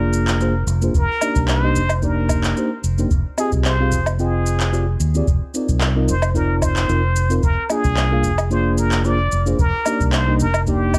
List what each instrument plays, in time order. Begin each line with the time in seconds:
Already playing: fingered electric bass F1, fm electric piano A#3 D4 F4 G#4 D5, muted trumpet A#4
0.13 shaker
0.27 clap, shaker
0.40 fm electric piano A#3 D4 F4 G#4 C5, shaker
0.67 fingered electric bass F1, shaker
0.81 fm electric piano A#3 D4 F4 G#4 C5, shaker
0.95 fingered electric bass F1, muted trumpet A#4, kick, shaker
1.21 fm electric piano A#3 D4 D#4 G4 D5, low woodblock, shaker
1.35 fingered electric bass C2, kick, shaker
1.48 muted trumpet C5, clap, shaker
1.63 fm electric piano A#3 D4 D#4 G4 D#5
1.75 fingered electric bass F1, shaker
1.89 low woodblock, shaker
2.02 fm electric piano A#3 D4 D#4 G4 D5, muted trumpet A#4, kick, shaker
2.29 kick, low woodblock, shaker
2.44 clap, shaker
2.56 fm electric piano A#3 D4 D#4 G4 C5, shaker
2.84 fingered electric bass F1, shaker
2.98 fm electric piano A#3 D4 D#4 G4 C5, shaker
3.11 fingered electric bass F1, kick, shaker
3.37 fm electric piano C4 F4 G4 G#4 D#5, muted trumpet G#4, low woodblock, shaker
3.52 fingered electric bass C2, kick, shaker
3.65 muted trumpet C5, clap, shaker
3.80 fm electric piano C4 F4 G4 G#4 F5
3.92 fingered electric bass F1, kick, shaker
4.06 low woodblock, shaker
4.19 fm electric piano C4 F4 G#4 D#5 G5, muted trumpet G#4, shaker
4.46 shaker
4.60 clap, shaker
4.72 fm electric piano C4 F4 G4 G#4 D5, shaker
5.00 fingered electric bass D#2, shaker
5.15 fm electric piano C4 F4 G4 G#4 D5, shaker
5.27 fingered electric bass F1, kick, shaker
5.54 fm electric piano C4 D#4 F4 A#4 D5, shaker
5.69 fingered electric bass C2, kick, shaker
5.81 clap, shaker
5.95 fm electric piano C4 D#4 F4 A#4 D#5
6.08 fingered electric bass F1, muted trumpet C5, shaker
6.22 low woodblock, shaker
6.34 fm electric piano C4 D#4 F4 A#4 D5, muted trumpet A#4, kick, shaker
6.62 muted trumpet C5, kick, low woodblock, shaker
6.76 clap, shaker
6.88 fingered electric bass F1, fm electric piano C4 D#4 F4 A#4 C5, shaker
7.16 shaker
7.30 fm electric piano C4 D#4 F4 A#4 C5, shaker
7.43 fingered electric bass F1, muted trumpet A#4, kick, shaker
7.70 fm electric piano A#3 D4 F4 G#4 D5, muted trumpet G#4, low woodblock, shaker
7.84 fingered electric bass C2, kick, shaker
7.97 clap, shaker
8.11 fm electric piano A#3 D4 F4 G#4 F5
8.24 fingered electric bass F1, kick, shaker
8.38 low woodblock, shaker
8.50 fm electric piano A#3 D4 F4 G#4 D5, muted trumpet C5, shaker
8.78 muted trumpet A#4, shaker
8.92 clap, shaker
9.05 fm electric piano A#3 D4 F4 G#4 C5, muted trumpet D5, shaker
9.32 fingered electric bass F1, shaker
9.46 fm electric piano A#3 D4 F4 G#4 C5, shaker
9.59 fingered electric bass F1, muted trumpet A#4, kick, shaker
9.85 fm electric piano A#3 D4 D#4 G4 D5, low woodblock, shaker
10.00 fingered electric bass C2, kick, shaker
10.13 muted trumpet C5, clap, shaker
10.27 fm electric piano A#3 D4 D#4 G4 D#5
10.40 fingered electric bass F1, muted trumpet A#4, shaker
10.54 low woodblock, shaker
10.67 fm electric piano A#3 D4 D#4 G4 D5, muted trumpet G4, kick, shaker
10.94 kick, low woodblock, shaker